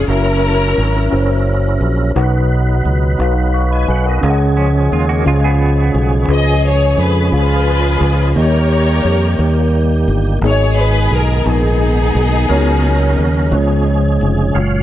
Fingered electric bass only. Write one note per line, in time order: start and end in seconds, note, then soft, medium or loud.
0.08 0.73 F#1 medium
0.78 1.09 G#1 medium
1.12 1.77 F#1 medium
1.81 2.12 A#1 medium
2.16 2.80 B1 medium
2.85 3.16 C#2 medium
3.19 3.84 B1 medium
3.88 4.20 B1 medium
4.23 4.88 C#2 loud
4.92 5.23 D#2 medium
5.26 5.91 C#2 medium
5.94 6.26 B1 medium
6.28 6.94 C#2 medium
6.98 7.30 F2 medium
7.32 7.97 C#2 medium
8.01 8.33 C#2 medium
8.36 9.01 D#2 medium
9.05 9.37 F2 medium
9.39 10.04 D#2 medium
10.08 10.40 G1 medium
10.41 11.07 G#1 loud
11.11 11.43 B1 medium
11.46 12.11 A#1 medium
12.15 12.47 B1 medium
12.50 13.15 C#2 medium
13.18 13.50 D#2 medium
13.52 14.17 C#2 medium
14.21 14.53 F1 medium
14.55 14.83 F#1 medium